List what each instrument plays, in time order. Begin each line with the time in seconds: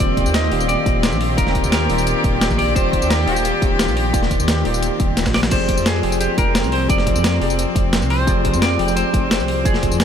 Already playing: string section C4, clean electric guitar D5
0.00 detuned saw bass D#1, tine electric piano D#3 A#3 F4 G4 D5, string section D#3 G4
0.17 kick, closed hi-hat, tambourine
0.26 detuned saw bass D#2, tambourine
0.34 clean electric guitar D#5, snare, closed hi-hat, tambourine
0.50 detuned saw bass D#1, tine electric piano D#3 A#3 F4 G4 F5, open hi-hat
0.61 tambourine
0.68 clean electric guitar D5, closed hi-hat, tambourine
0.86 detuned saw bass D#1, kick, closed hi-hat, tambourine
1.03 snare, closed hi-hat, tambourine
1.12 detuned saw bass A#1, tambourine
1.21 open hi-hat
1.36 detuned saw bass D#1, tine electric piano D#3 A#3 F4 G4 D5, clean electric guitar A#4, kick, closed hi-hat, tambourine
1.47 snare
1.55 kick, closed hi-hat, tambourine
1.64 detuned saw bass D#2, tambourine
1.72 clean electric guitar A#4, snare, closed hi-hat, tambourine
1.88 detuned saw bass D#1, tine electric piano D#3 A#3 F4 G4 D5, open hi-hat, tambourine
1.98 tambourine
2.07 closed hi-hat, tambourine
2.24 detuned saw bass D#1, kick, closed hi-hat, tambourine
2.41 snare, closed hi-hat, tambourine
2.50 detuned saw bass A#1, kick, tambourine
2.58 clean electric guitar D5, open hi-hat
2.74 detuned saw bass D#1, tine electric piano D#3 A#3 F4 G4 D5, clean electric guitar C5, kick, closed hi-hat, tambourine
2.93 kick, closed hi-hat, tambourine
3.02 detuned saw bass D#2, tambourine
3.10 clean electric guitar A#4, snare, closed hi-hat, tambourine
3.26 detuned saw bass D#1, tine electric piano D#3 A#3 F4 G4 F5, clean electric guitar G4, open hi-hat
3.36 tambourine
3.45 closed hi-hat, tambourine
3.62 detuned saw bass D#1, kick, closed hi-hat, tambourine
3.79 snare, closed hi-hat, tambourine
3.88 detuned saw bass A#1, tambourine
3.97 open hi-hat
4.12 detuned saw bass D#1, tine electric piano D#3 A#3 F4 G4 D5, kick, closed hi-hat, tambourine
4.23 snare
4.31 kick, closed hi-hat, tambourine
4.39 detuned saw bass D#2, tambourine
4.48 snare, closed hi-hat, tambourine
4.64 detuned saw bass D#1, tine electric piano D#3 A#3 F4 G4 D5, open hi-hat
4.74 tambourine
4.83 closed hi-hat, tambourine
5.00 detuned saw bass D#1, kick, closed hi-hat, tambourine
5.17 snare, closed hi-hat, tambourine
5.26 detuned saw bass A#1, kick, snare, tambourine
5.34 clean electric guitar D5, snare, open hi-hat
5.43 snare
5.50 detuned saw bass F1, tine electric piano F3 C4 G4 G#4 D5, string section C4, clean electric guitar C5, kick, closed hi-hat, crash, tambourine
5.69 kick, closed hi-hat, tambourine
5.77 detuned saw bass F2, tambourine
5.86 clean electric guitar G#4, snare, closed hi-hat, tambourine
6.02 detuned saw bass F1, tine electric piano F3 C4 G4 G#4 G5, open hi-hat
6.12 tambourine
6.21 clean electric guitar G4, closed hi-hat, tambourine
6.38 detuned saw bass F1, clean electric guitar A#4, kick, closed hi-hat, tambourine
6.55 snare, closed hi-hat, tambourine
6.64 detuned saw bass C2, tambourine
6.72 clean electric guitar C5, open hi-hat
6.88 detuned saw bass F1, tine electric piano F3 C4 G4 G#4 D5, clean electric guitar D5, kick, closed hi-hat, tambourine
6.98 snare
7.07 kick, closed hi-hat, tambourine
7.15 detuned saw bass F2, tambourine
7.24 snare, closed hi-hat, tambourine
7.40 detuned saw bass F1, tine electric piano F3 C4 G4 G#4 D5, open hi-hat
7.50 tambourine
7.59 closed hi-hat, tambourine
7.76 detuned saw bass F1, kick, closed hi-hat, tambourine
7.93 snare, closed hi-hat, tambourine
8.02 detuned saw bass C2, tambourine
8.10 clean electric guitar C5, open hi-hat
8.26 detuned saw bass F1, tine electric piano F3 C4 G4 G#4 D5, kick, closed hi-hat, tambourine
8.45 kick, closed hi-hat, tambourine
8.54 detuned saw bass F2, tambourine
8.62 clean electric guitar D5, snare, closed hi-hat, tambourine
8.78 detuned saw bass F1, tine electric piano F3 C4 G4 G#4 G5, open hi-hat
8.88 tambourine
8.96 clean electric guitar C5, closed hi-hat, tambourine
9.14 detuned saw bass F1, kick, closed hi-hat, tambourine
9.31 snare, closed hi-hat, tambourine
9.40 detuned saw bass C2, tambourine
9.48 open hi-hat
9.64 detuned saw bass F1, tine electric piano F3 C4 G#4 D5 G5, clean electric guitar G#4, kick, closed hi-hat, tambourine
9.74 snare
9.83 kick, closed hi-hat, tambourine
9.91 detuned saw bass F2, tambourine
10.00 clean electric guitar G#4, snare, closed hi-hat, tambourine